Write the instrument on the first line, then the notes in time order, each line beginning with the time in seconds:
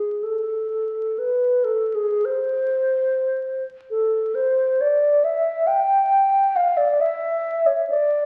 alto flute
Already playing: G#4
0.23 A4
1.19 B4
1.64 A4
1.95 G#4
2.25 C5
3.90 A4
4.35 C5
4.81 D5
5.24 E5
5.67 G5
6.56 F5
6.77 D5
7.00 E5
7.66 C#5
7.90 D5